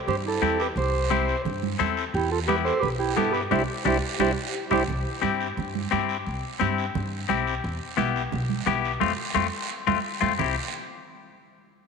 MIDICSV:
0, 0, Header, 1, 6, 480
1, 0, Start_track
1, 0, Key_signature, 0, "major"
1, 0, Tempo, 343446
1, 1078, Time_signature, 4, 2, 24, 8
1, 16594, End_track
2, 0, Start_track
2, 0, Title_t, "Transistor combo organ"
2, 0, Program_c, 0, 18
2, 120, Note_on_c, 0, 72, 94
2, 227, Note_off_c, 0, 72, 0
2, 391, Note_on_c, 0, 69, 87
2, 851, Note_on_c, 0, 71, 87
2, 868, Note_off_c, 0, 69, 0
2, 956, Note_off_c, 0, 71, 0
2, 1085, Note_on_c, 0, 72, 88
2, 1984, Note_off_c, 0, 72, 0
2, 3000, Note_on_c, 0, 67, 98
2, 3221, Note_off_c, 0, 67, 0
2, 3238, Note_on_c, 0, 69, 84
2, 3346, Note_off_c, 0, 69, 0
2, 3471, Note_on_c, 0, 71, 92
2, 3579, Note_off_c, 0, 71, 0
2, 3704, Note_on_c, 0, 72, 109
2, 3937, Note_on_c, 0, 71, 108
2, 3956, Note_off_c, 0, 72, 0
2, 4049, Note_off_c, 0, 71, 0
2, 4181, Note_on_c, 0, 67, 74
2, 4410, Note_off_c, 0, 67, 0
2, 4422, Note_on_c, 0, 69, 93
2, 4651, Note_off_c, 0, 69, 0
2, 4651, Note_on_c, 0, 71, 89
2, 4764, Note_off_c, 0, 71, 0
2, 4917, Note_on_c, 0, 72, 95
2, 4921, Note_on_c, 0, 64, 93
2, 4923, Note_on_c, 0, 67, 90
2, 5069, Note_off_c, 0, 72, 0
2, 5072, Note_off_c, 0, 64, 0
2, 5072, Note_off_c, 0, 67, 0
2, 5416, Note_on_c, 0, 64, 97
2, 5416, Note_on_c, 0, 67, 90
2, 5418, Note_on_c, 0, 72, 92
2, 5560, Note_off_c, 0, 64, 0
2, 5560, Note_off_c, 0, 67, 0
2, 5561, Note_off_c, 0, 72, 0
2, 5886, Note_on_c, 0, 64, 107
2, 5886, Note_on_c, 0, 67, 97
2, 5888, Note_on_c, 0, 72, 95
2, 6034, Note_off_c, 0, 64, 0
2, 6034, Note_off_c, 0, 67, 0
2, 6035, Note_off_c, 0, 72, 0
2, 6610, Note_on_c, 0, 64, 105
2, 6610, Note_on_c, 0, 72, 104
2, 6619, Note_on_c, 0, 67, 101
2, 6756, Note_off_c, 0, 64, 0
2, 6756, Note_off_c, 0, 72, 0
2, 6762, Note_off_c, 0, 67, 0
2, 16594, End_track
3, 0, Start_track
3, 0, Title_t, "Clarinet"
3, 0, Program_c, 1, 71
3, 103, Note_on_c, 1, 67, 91
3, 214, Note_off_c, 1, 67, 0
3, 337, Note_on_c, 1, 64, 75
3, 793, Note_off_c, 1, 64, 0
3, 831, Note_on_c, 1, 67, 76
3, 940, Note_off_c, 1, 67, 0
3, 1068, Note_on_c, 1, 67, 80
3, 1976, Note_off_c, 1, 67, 0
3, 2987, Note_on_c, 1, 64, 83
3, 3214, Note_off_c, 1, 64, 0
3, 3234, Note_on_c, 1, 65, 72
3, 3342, Note_off_c, 1, 65, 0
3, 3457, Note_on_c, 1, 67, 84
3, 3569, Note_off_c, 1, 67, 0
3, 3681, Note_on_c, 1, 69, 84
3, 3893, Note_off_c, 1, 69, 0
3, 3901, Note_on_c, 1, 67, 94
3, 4021, Note_off_c, 1, 67, 0
3, 4157, Note_on_c, 1, 64, 74
3, 4386, Note_off_c, 1, 64, 0
3, 4394, Note_on_c, 1, 64, 81
3, 4619, Note_off_c, 1, 64, 0
3, 4627, Note_on_c, 1, 67, 78
3, 4746, Note_off_c, 1, 67, 0
3, 4894, Note_on_c, 1, 67, 86
3, 5015, Note_off_c, 1, 67, 0
3, 5380, Note_on_c, 1, 67, 94
3, 5499, Note_off_c, 1, 67, 0
3, 5869, Note_on_c, 1, 67, 94
3, 5985, Note_off_c, 1, 67, 0
3, 6577, Note_on_c, 1, 67, 98
3, 6697, Note_off_c, 1, 67, 0
3, 16594, End_track
4, 0, Start_track
4, 0, Title_t, "Clean electric guitar"
4, 0, Program_c, 2, 27
4, 586, Note_on_c, 2, 60, 68
4, 588, Note_on_c, 2, 64, 50
4, 592, Note_on_c, 2, 67, 84
4, 926, Note_off_c, 2, 64, 0
4, 928, Note_off_c, 2, 60, 0
4, 930, Note_off_c, 2, 67, 0
4, 1543, Note_on_c, 2, 60, 72
4, 1550, Note_on_c, 2, 67, 79
4, 1553, Note_on_c, 2, 64, 67
4, 1885, Note_off_c, 2, 60, 0
4, 1888, Note_off_c, 2, 64, 0
4, 1890, Note_off_c, 2, 67, 0
4, 2504, Note_on_c, 2, 60, 92
4, 2508, Note_on_c, 2, 64, 70
4, 2511, Note_on_c, 2, 69, 88
4, 2846, Note_off_c, 2, 60, 0
4, 2846, Note_off_c, 2, 64, 0
4, 2849, Note_off_c, 2, 69, 0
4, 3467, Note_on_c, 2, 59, 71
4, 3474, Note_on_c, 2, 64, 67
4, 3481, Note_on_c, 2, 67, 88
4, 3807, Note_off_c, 2, 59, 0
4, 3810, Note_off_c, 2, 64, 0
4, 3814, Note_off_c, 2, 67, 0
4, 4424, Note_on_c, 2, 59, 72
4, 4434, Note_on_c, 2, 67, 78
4, 4437, Note_on_c, 2, 64, 60
4, 4765, Note_off_c, 2, 59, 0
4, 4769, Note_off_c, 2, 64, 0
4, 4771, Note_off_c, 2, 67, 0
4, 4906, Note_on_c, 2, 62, 91
4, 4911, Note_on_c, 2, 67, 89
4, 4917, Note_on_c, 2, 64, 85
4, 5063, Note_off_c, 2, 64, 0
4, 5064, Note_off_c, 2, 67, 0
4, 5065, Note_off_c, 2, 62, 0
4, 5382, Note_on_c, 2, 62, 98
4, 5390, Note_on_c, 2, 67, 81
4, 5399, Note_on_c, 2, 64, 86
4, 5542, Note_off_c, 2, 62, 0
4, 5543, Note_off_c, 2, 67, 0
4, 5544, Note_off_c, 2, 64, 0
4, 5869, Note_on_c, 2, 62, 98
4, 5869, Note_on_c, 2, 67, 84
4, 5875, Note_on_c, 2, 64, 74
4, 6022, Note_off_c, 2, 64, 0
4, 6023, Note_off_c, 2, 67, 0
4, 6026, Note_off_c, 2, 62, 0
4, 6584, Note_on_c, 2, 64, 84
4, 6594, Note_on_c, 2, 67, 90
4, 6603, Note_on_c, 2, 62, 67
4, 6743, Note_off_c, 2, 64, 0
4, 6745, Note_off_c, 2, 67, 0
4, 6746, Note_off_c, 2, 62, 0
4, 7289, Note_on_c, 2, 60, 83
4, 7298, Note_on_c, 2, 67, 99
4, 7302, Note_on_c, 2, 64, 63
4, 7636, Note_off_c, 2, 60, 0
4, 7641, Note_off_c, 2, 64, 0
4, 7641, Note_off_c, 2, 67, 0
4, 8259, Note_on_c, 2, 60, 76
4, 8272, Note_on_c, 2, 64, 71
4, 8272, Note_on_c, 2, 67, 96
4, 8603, Note_off_c, 2, 60, 0
4, 8604, Note_off_c, 2, 64, 0
4, 8608, Note_off_c, 2, 67, 0
4, 9219, Note_on_c, 2, 60, 93
4, 9231, Note_on_c, 2, 64, 72
4, 9235, Note_on_c, 2, 67, 98
4, 9563, Note_off_c, 2, 60, 0
4, 9565, Note_off_c, 2, 64, 0
4, 9570, Note_off_c, 2, 67, 0
4, 10186, Note_on_c, 2, 60, 86
4, 10194, Note_on_c, 2, 64, 65
4, 10197, Note_on_c, 2, 67, 89
4, 10526, Note_off_c, 2, 60, 0
4, 10527, Note_off_c, 2, 64, 0
4, 10531, Note_off_c, 2, 67, 0
4, 11138, Note_on_c, 2, 59, 96
4, 11146, Note_on_c, 2, 64, 77
4, 11151, Note_on_c, 2, 67, 92
4, 11483, Note_off_c, 2, 59, 0
4, 11484, Note_off_c, 2, 64, 0
4, 11489, Note_off_c, 2, 67, 0
4, 12108, Note_on_c, 2, 59, 80
4, 12118, Note_on_c, 2, 64, 69
4, 12120, Note_on_c, 2, 67, 101
4, 12448, Note_off_c, 2, 59, 0
4, 12450, Note_off_c, 2, 64, 0
4, 12453, Note_off_c, 2, 67, 0
4, 12582, Note_on_c, 2, 57, 89
4, 12592, Note_on_c, 2, 60, 87
4, 12596, Note_on_c, 2, 65, 89
4, 12742, Note_off_c, 2, 57, 0
4, 12744, Note_off_c, 2, 65, 0
4, 12745, Note_off_c, 2, 60, 0
4, 13060, Note_on_c, 2, 57, 96
4, 13069, Note_on_c, 2, 65, 102
4, 13070, Note_on_c, 2, 60, 97
4, 13221, Note_off_c, 2, 57, 0
4, 13224, Note_off_c, 2, 60, 0
4, 13225, Note_off_c, 2, 65, 0
4, 13795, Note_on_c, 2, 60, 79
4, 13796, Note_on_c, 2, 65, 100
4, 13803, Note_on_c, 2, 57, 84
4, 13949, Note_off_c, 2, 60, 0
4, 13950, Note_off_c, 2, 57, 0
4, 13951, Note_off_c, 2, 65, 0
4, 14265, Note_on_c, 2, 65, 101
4, 14272, Note_on_c, 2, 60, 85
4, 14280, Note_on_c, 2, 57, 85
4, 14425, Note_off_c, 2, 65, 0
4, 14426, Note_off_c, 2, 60, 0
4, 14427, Note_off_c, 2, 57, 0
4, 14513, Note_on_c, 2, 60, 74
4, 14520, Note_on_c, 2, 64, 65
4, 14524, Note_on_c, 2, 67, 60
4, 14738, Note_off_c, 2, 60, 0
4, 14741, Note_off_c, 2, 67, 0
4, 14742, Note_off_c, 2, 64, 0
4, 16594, End_track
5, 0, Start_track
5, 0, Title_t, "Upright bass"
5, 0, Program_c, 3, 32
5, 105, Note_on_c, 3, 43, 98
5, 494, Note_off_c, 3, 43, 0
5, 583, Note_on_c, 3, 40, 81
5, 973, Note_off_c, 3, 40, 0
5, 1058, Note_on_c, 3, 36, 104
5, 1833, Note_off_c, 3, 36, 0
5, 2027, Note_on_c, 3, 43, 95
5, 2414, Note_off_c, 3, 43, 0
5, 2515, Note_on_c, 3, 40, 84
5, 2899, Note_off_c, 3, 40, 0
5, 2991, Note_on_c, 3, 40, 107
5, 3760, Note_off_c, 3, 40, 0
5, 3950, Note_on_c, 3, 35, 88
5, 4335, Note_off_c, 3, 35, 0
5, 4429, Note_on_c, 3, 43, 83
5, 4815, Note_off_c, 3, 43, 0
5, 4904, Note_on_c, 3, 36, 96
5, 5087, Note_off_c, 3, 36, 0
5, 5384, Note_on_c, 3, 36, 93
5, 5567, Note_off_c, 3, 36, 0
5, 5861, Note_on_c, 3, 36, 98
5, 6045, Note_off_c, 3, 36, 0
5, 6585, Note_on_c, 3, 36, 89
5, 6767, Note_off_c, 3, 36, 0
5, 6821, Note_on_c, 3, 36, 95
5, 7017, Note_off_c, 3, 36, 0
5, 7307, Note_on_c, 3, 43, 80
5, 7693, Note_off_c, 3, 43, 0
5, 7788, Note_on_c, 3, 43, 100
5, 8173, Note_off_c, 3, 43, 0
5, 8279, Note_on_c, 3, 43, 79
5, 8660, Note_off_c, 3, 43, 0
5, 8762, Note_on_c, 3, 36, 92
5, 8950, Note_off_c, 3, 36, 0
5, 9242, Note_on_c, 3, 43, 91
5, 9622, Note_off_c, 3, 43, 0
5, 9717, Note_on_c, 3, 43, 101
5, 10099, Note_off_c, 3, 43, 0
5, 10196, Note_on_c, 3, 35, 80
5, 10579, Note_off_c, 3, 35, 0
5, 10679, Note_on_c, 3, 40, 101
5, 10868, Note_off_c, 3, 40, 0
5, 11153, Note_on_c, 3, 35, 83
5, 11537, Note_off_c, 3, 35, 0
5, 11637, Note_on_c, 3, 35, 90
5, 12020, Note_off_c, 3, 35, 0
5, 12110, Note_on_c, 3, 35, 82
5, 12496, Note_off_c, 3, 35, 0
5, 12599, Note_on_c, 3, 41, 86
5, 12775, Note_off_c, 3, 41, 0
5, 13072, Note_on_c, 3, 41, 86
5, 13252, Note_off_c, 3, 41, 0
5, 13796, Note_on_c, 3, 41, 85
5, 13974, Note_off_c, 3, 41, 0
5, 14276, Note_on_c, 3, 41, 105
5, 14455, Note_off_c, 3, 41, 0
5, 14518, Note_on_c, 3, 36, 86
5, 14741, Note_off_c, 3, 36, 0
5, 16594, End_track
6, 0, Start_track
6, 0, Title_t, "Drums"
6, 117, Note_on_c, 9, 64, 78
6, 119, Note_on_c, 9, 74, 71
6, 257, Note_off_c, 9, 64, 0
6, 258, Note_off_c, 9, 74, 0
6, 594, Note_on_c, 9, 63, 80
6, 594, Note_on_c, 9, 73, 75
6, 733, Note_off_c, 9, 63, 0
6, 734, Note_off_c, 9, 73, 0
6, 835, Note_on_c, 9, 73, 80
6, 975, Note_off_c, 9, 73, 0
6, 1076, Note_on_c, 9, 74, 68
6, 1082, Note_on_c, 9, 64, 67
6, 1216, Note_off_c, 9, 74, 0
6, 1222, Note_off_c, 9, 64, 0
6, 1553, Note_on_c, 9, 73, 69
6, 1563, Note_on_c, 9, 63, 78
6, 1693, Note_off_c, 9, 73, 0
6, 1702, Note_off_c, 9, 63, 0
6, 1794, Note_on_c, 9, 73, 64
6, 1934, Note_off_c, 9, 73, 0
6, 2031, Note_on_c, 9, 74, 66
6, 2043, Note_on_c, 9, 64, 83
6, 2171, Note_off_c, 9, 74, 0
6, 2182, Note_off_c, 9, 64, 0
6, 2280, Note_on_c, 9, 63, 78
6, 2420, Note_off_c, 9, 63, 0
6, 2523, Note_on_c, 9, 73, 72
6, 2525, Note_on_c, 9, 63, 81
6, 2663, Note_off_c, 9, 73, 0
6, 2665, Note_off_c, 9, 63, 0
6, 2755, Note_on_c, 9, 73, 80
6, 2895, Note_off_c, 9, 73, 0
6, 3000, Note_on_c, 9, 74, 73
6, 3139, Note_off_c, 9, 74, 0
6, 3478, Note_on_c, 9, 73, 76
6, 3487, Note_on_c, 9, 63, 82
6, 3618, Note_off_c, 9, 73, 0
6, 3627, Note_off_c, 9, 63, 0
6, 3721, Note_on_c, 9, 73, 73
6, 3861, Note_off_c, 9, 73, 0
6, 3960, Note_on_c, 9, 74, 72
6, 3963, Note_on_c, 9, 64, 82
6, 4100, Note_off_c, 9, 74, 0
6, 4103, Note_off_c, 9, 64, 0
6, 4431, Note_on_c, 9, 73, 71
6, 4436, Note_on_c, 9, 63, 79
6, 4571, Note_off_c, 9, 73, 0
6, 4576, Note_off_c, 9, 63, 0
6, 4664, Note_on_c, 9, 73, 75
6, 4804, Note_off_c, 9, 73, 0
6, 4909, Note_on_c, 9, 74, 92
6, 4917, Note_on_c, 9, 63, 97
6, 5049, Note_off_c, 9, 74, 0
6, 5057, Note_off_c, 9, 63, 0
6, 5387, Note_on_c, 9, 74, 101
6, 5396, Note_on_c, 9, 63, 93
6, 5527, Note_off_c, 9, 74, 0
6, 5535, Note_off_c, 9, 63, 0
6, 5866, Note_on_c, 9, 74, 96
6, 5868, Note_on_c, 9, 63, 97
6, 6005, Note_off_c, 9, 74, 0
6, 6008, Note_off_c, 9, 63, 0
6, 6579, Note_on_c, 9, 74, 101
6, 6601, Note_on_c, 9, 63, 103
6, 6719, Note_off_c, 9, 74, 0
6, 6740, Note_off_c, 9, 63, 0
6, 6824, Note_on_c, 9, 74, 66
6, 6843, Note_on_c, 9, 64, 72
6, 6964, Note_off_c, 9, 74, 0
6, 6983, Note_off_c, 9, 64, 0
6, 7303, Note_on_c, 9, 73, 66
6, 7313, Note_on_c, 9, 63, 80
6, 7443, Note_off_c, 9, 73, 0
6, 7453, Note_off_c, 9, 63, 0
6, 7554, Note_on_c, 9, 73, 67
6, 7693, Note_off_c, 9, 73, 0
6, 7790, Note_on_c, 9, 74, 70
6, 7801, Note_on_c, 9, 64, 78
6, 7930, Note_off_c, 9, 74, 0
6, 7941, Note_off_c, 9, 64, 0
6, 8040, Note_on_c, 9, 63, 73
6, 8180, Note_off_c, 9, 63, 0
6, 8273, Note_on_c, 9, 73, 69
6, 8288, Note_on_c, 9, 63, 86
6, 8413, Note_off_c, 9, 73, 0
6, 8428, Note_off_c, 9, 63, 0
6, 8514, Note_on_c, 9, 73, 74
6, 8654, Note_off_c, 9, 73, 0
6, 8755, Note_on_c, 9, 74, 66
6, 8895, Note_off_c, 9, 74, 0
6, 9234, Note_on_c, 9, 73, 67
6, 9238, Note_on_c, 9, 63, 91
6, 9374, Note_off_c, 9, 73, 0
6, 9377, Note_off_c, 9, 63, 0
6, 9480, Note_on_c, 9, 73, 71
6, 9620, Note_off_c, 9, 73, 0
6, 9717, Note_on_c, 9, 64, 87
6, 9718, Note_on_c, 9, 74, 70
6, 9857, Note_off_c, 9, 64, 0
6, 9858, Note_off_c, 9, 74, 0
6, 10197, Note_on_c, 9, 63, 83
6, 10211, Note_on_c, 9, 73, 64
6, 10337, Note_off_c, 9, 63, 0
6, 10351, Note_off_c, 9, 73, 0
6, 10444, Note_on_c, 9, 73, 76
6, 10583, Note_off_c, 9, 73, 0
6, 10684, Note_on_c, 9, 74, 69
6, 10824, Note_off_c, 9, 74, 0
6, 11152, Note_on_c, 9, 63, 88
6, 11162, Note_on_c, 9, 73, 72
6, 11292, Note_off_c, 9, 63, 0
6, 11302, Note_off_c, 9, 73, 0
6, 11403, Note_on_c, 9, 73, 70
6, 11542, Note_off_c, 9, 73, 0
6, 11633, Note_on_c, 9, 64, 83
6, 11648, Note_on_c, 9, 74, 64
6, 11773, Note_off_c, 9, 64, 0
6, 11788, Note_off_c, 9, 74, 0
6, 11871, Note_on_c, 9, 63, 71
6, 12011, Note_off_c, 9, 63, 0
6, 12118, Note_on_c, 9, 63, 91
6, 12118, Note_on_c, 9, 64, 73
6, 12125, Note_on_c, 9, 73, 64
6, 12257, Note_off_c, 9, 63, 0
6, 12257, Note_off_c, 9, 64, 0
6, 12265, Note_off_c, 9, 73, 0
6, 12363, Note_on_c, 9, 73, 70
6, 12502, Note_off_c, 9, 73, 0
6, 12595, Note_on_c, 9, 63, 96
6, 12598, Note_on_c, 9, 74, 99
6, 12735, Note_off_c, 9, 63, 0
6, 12738, Note_off_c, 9, 74, 0
6, 13072, Note_on_c, 9, 74, 97
6, 13078, Note_on_c, 9, 63, 104
6, 13212, Note_off_c, 9, 74, 0
6, 13218, Note_off_c, 9, 63, 0
6, 13802, Note_on_c, 9, 74, 91
6, 13810, Note_on_c, 9, 63, 108
6, 13942, Note_off_c, 9, 74, 0
6, 13950, Note_off_c, 9, 63, 0
6, 14273, Note_on_c, 9, 74, 108
6, 14282, Note_on_c, 9, 63, 89
6, 14413, Note_off_c, 9, 74, 0
6, 14422, Note_off_c, 9, 63, 0
6, 14525, Note_on_c, 9, 74, 100
6, 14528, Note_on_c, 9, 64, 101
6, 14665, Note_off_c, 9, 74, 0
6, 14668, Note_off_c, 9, 64, 0
6, 16594, End_track
0, 0, End_of_file